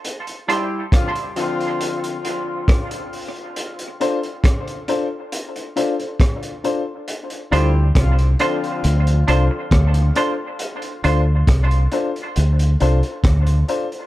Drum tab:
HH |xxx-xxxxxxx-xxox|xxxxxxx-xxxxxxx-|xxx-xxxxxxx-xxx-|xxx-xxxxxxxxxxxx|
SD |----r-------r---|----r-------r---|----r-------r---|----r-------r---|
BD |----o-------o---|----o-------o---|----o-------o---|----o-------o---|